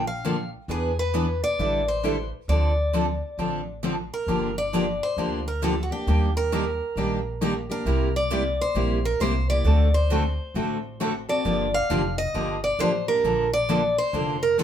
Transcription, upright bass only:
Already playing: A#1
0.68 E2
1.59 A1
2.48 D2
3.38 A1
4.27 G1
5.17 D2
6.07 D#2
6.96 A#1
7.85 C2
8.75 A#1
9.20 C2
9.64 D2
10.54 A1
11.44 G1
11.90 F1
12.34 G1
12.79 A1
13.24 A#1
14.13 F1

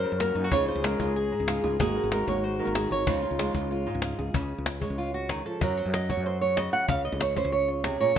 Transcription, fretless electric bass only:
0.12 F#2
0.35 F#2
0.51 C#2
0.75 C#2
1.00 C#2
1.40 C#2
1.64 C#2
1.79 G#1
2.04 G#1
2.27 G#1
2.67 G#1
2.91 G#1
3.07 C#2
3.31 C#2
3.54 C#2
3.95 C#2
4.19 C#2
4.34 C#2
4.58 C#2
4.90 C#2
5.61 F#2
5.86 F#2
6.17 F#2
6.88 C#2
7.12 C#2
7.44 C#2

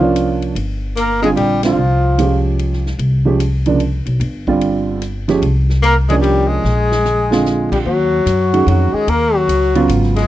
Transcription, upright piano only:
0.00 F3 A#3 C#4 D4
1.22 D3 G3 C4 F4
1.64 D3 G3 C4 F4
2.18 F3 G#3 C#4 G4
3.25 F3 G#3 C#4 G4
3.66 C#3 F3 A#3 D4
4.48 D3 G3 C4 F4
5.28 F3 G#3 C#4 G4
6.09 F3 A#3 C#4 D4
7.31 D3 G#3 C4 F4
8.53 D#3 G#3 C#4 F#4
9.75 C#3 F#3 B3 F4

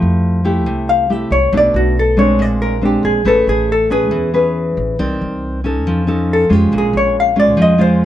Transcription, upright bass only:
0.02 F2
0.67 C2
1.31 C2
1.52 B1
1.74 B1
2.38 A#1
3.03 A#1
3.25 A1
3.47 A1
4.12 E2
4.77 A1
4.99 C2
5.21 C2
5.86 F2
6.50 F2
6.72 A#1
6.93 A#1
7.57 F2

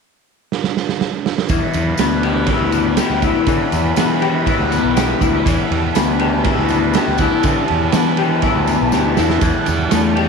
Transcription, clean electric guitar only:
1.50 E3
2.00 B3
2.24 G4
2.48 E4
2.73 B3
2.98 G4
3.23 E4
3.48 E3
3.97 B3
4.21 G4
4.46 E4
4.71 B3
4.95 G4
5.21 E4
5.45 E3
5.95 B3
6.20 G4
6.45 E4
6.70 B3
6.95 G4
7.20 E4
7.44 E3
7.94 B3
8.18 G4
8.43 E4
8.67 B3
8.93 G4
9.18 E4
9.42 E3
9.91 A3
10.16 G4

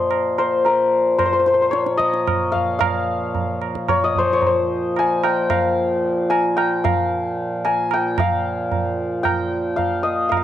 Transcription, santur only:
Already playing: C5 D#5
0.38 C5
0.66 A#4
1.18 C5
1.25 C5
1.33 C5
1.39 C5
1.47 C5
1.54 C5
1.62 C5
1.71 C#5
1.97 D#5
2.52 F5
2.79 F5
3.89 C#5
4.04 D#5
4.19 C5
4.33 C#5
4.47 C5
4.99 G#5
5.24 G5
5.50 F5
6.30 G#5
6.57 G5
6.84 F5
7.65 G#5
7.93 G5
8.19 F5
9.23 G5
9.76 F5
10.03 D#5
10.29 F5
10.37 F5

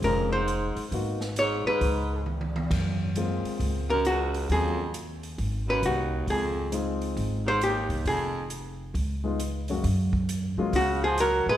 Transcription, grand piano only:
0.03 G#3 C4 C#4 F4
0.93 A#3 B3 D#4 F#4
3.16 G#3 A#3 C4 F4
4.50 F#3 A#3 C#4 F4
6.72 G#3 C4 D#4 F4
9.24 G#3 B3 D#4 F4
9.69 F#2 G#3 A#3 C#4 F#4
10.58 F#3 G#3 A#3 C#4 F4

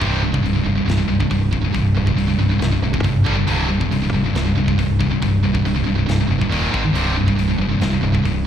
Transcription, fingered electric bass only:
0.02 C1
0.44 C1
0.65 F1
0.86 C1
1.08 C1
1.31 C1
1.75 C1
1.96 C1
2.16 C1
2.38 C1
2.59 C1
2.81 C1
3.04 F#1
3.26 G1
3.48 C1
3.91 C1
4.13 F1
4.35 C1
4.57 C1
4.79 C1
5.23 C1
5.43 C1
5.64 C1
5.87 C1
6.09 C1
6.30 F1
6.52 D#1
6.74 G#1
6.94 C1
7.37 C1
7.59 F1
7.82 C1
8.02 C1
8.26 C1

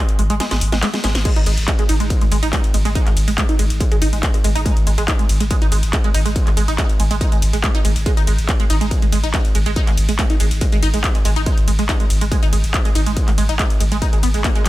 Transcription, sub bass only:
0.19 G#1
0.30 G#1
0.51 G#1
0.61 G#1
0.72 G#1
1.04 G#1
1.15 G#1
1.36 G#1
1.46 G#1
1.58 G#1
1.89 G#1
2.00 G#1
2.21 G#1
2.32 G#1
2.43 G#1
2.74 G#1
2.85 G#1
3.06 G#1
3.17 G#1
3.28 G#1
3.59 G#1
3.70 G#1
3.92 G#1
4.02 G#1
4.13 G#1
4.44 G#1
4.55 G#1
4.77 G#1
4.87 G#1
4.98 G#1
5.29 G#1
5.40 G#1
5.62 G#1
5.72 G#1
5.83 G#1
6.14 G#1
6.26 G#1
6.47 G#1
6.57 G#1
6.68 G#1
7.00 G#1
7.11 G#1
7.32 G#1
7.42 G#1
7.53 G#1
7.85 G#1
7.96 G#1
8.17 G#1
8.27 G#1
8.38 G#1
8.70 G#1
8.81 G#1
9.02 G#1
9.12 G#1
9.23 G#1
9.55 G#1
9.66 G#1
9.87 G#1
9.98 G#1
10.09 G#1
10.40 G#1
10.51 G#1
10.72 G#1
10.83 G#1
10.94 G#1
11.25 G#1
11.36 G#1
11.58 G#1
11.68 G#1
11.79 G#1
12.10 G#1
12.21 G#1
12.43 G#1
12.53 G#1
12.64 G#1
12.95 G#1
13.06 G#1
13.28 G#1
13.38 G#1
13.49 G#1
13.80 G#1
13.92 G#1
14.13 G#1
14.23 G#1
14.34 G#1
14.66 G#1

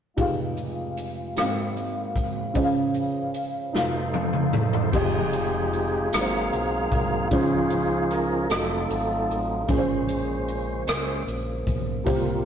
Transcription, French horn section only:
0.16 G#3 D#4 F4 F5
1.36 A#3 C4 F#4 G#4
2.55 C#4 C5
3.75 D#4 F#4 A4
4.94 G#3 D#4 F4 F5
6.14 F#3 A#3 C5
7.33 G#3 C#4
8.51 F#3 A3 D#4 F5
9.70 C#3 A#3 G#4 C5
12.06 C4 F4 G4

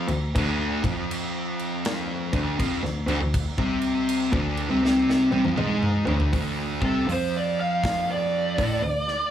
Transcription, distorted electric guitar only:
0.09 D2
0.36 D2 D3
0.84 F2 F3
2.33 D2 D3
2.59 F2 F3
2.83 D2
3.08 D2 D3
3.21 D2
3.58 C3 C4
4.32 D2 D3
4.69 C3 C4
4.84 C3 C4
5.32 C3 C4
5.45 F2 F3
5.57 G#2 G#3
6.06 D2 D3
6.33 D2 D3
6.82 C3 C4
7.07 F2 F3
8.59 A2 A3
8.82 D2

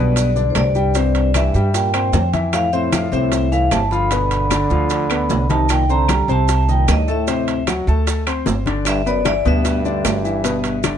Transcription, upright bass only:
Already playing: B1
0.55 C2
1.54 G2
2.13 F2
3.12 C2
3.71 G1
4.70 D2
5.29 C2
6.28 C2
6.88 D2
7.87 D2
8.47 G1
9.45 D2
10.05 G1

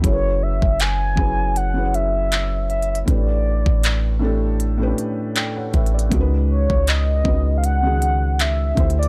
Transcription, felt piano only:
0.02 F#3 C#4 E4 G#4
0.06 A#4
0.13 B4
1.15 F#3 C#4 E4 G#4
1.20 B4
1.74 F#3 C#4 E4 G#4
1.79 B4
1.85 C#5
3.05 A2 A3 D4 G4
3.10 B4
4.19 A2 A3 D4 G4
4.24 A4
4.78 A2 A3 C#4 G4
4.83 B4
4.87 D4
5.36 D5 G5
5.56 C#5 F#5
5.74 B4 E5
5.94 A4 D5
6.09 C#3 G#3 D#4 F#4
6.14 A#4
6.20 B4
7.23 C#3 G#3 D#4 F#4
7.28 B4
7.82 C#3 D#3 G#3 F#4
7.86 G#4
8.75 D3 A3 E4 G4
8.80 C5

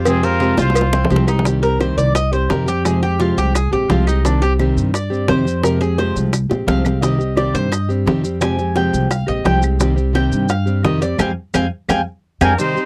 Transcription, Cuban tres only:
Already playing: F4
0.23 C4
0.58 F4
0.93 C4
1.28 D#4
1.63 A#4
1.81 C5
1.98 D5
2.15 D#5
2.33 C5
2.50 A#4
2.68 G4
2.85 G#4
3.03 G4
3.20 F4
3.38 G4
3.55 G#4
3.73 G4
3.90 F4
4.07 D#4
4.25 D4
4.42 G4
4.95 D5
5.29 C5
5.63 A#4
5.81 G#4
5.98 C5
6.68 F5
7.02 D#5
7.37 D5
7.55 C5
7.72 D#5
8.41 G#5
8.76 G5
9.11 F5
9.28 D#5
9.45 G5
10.15 G5
10.50 F5
10.84 D#5
11.02 D5
11.19 F5 G5 G#5
11.54 F5 G5 G#5
11.89 F5 G5 G#5
12.41 F5 G5 G#5
12.58 C4

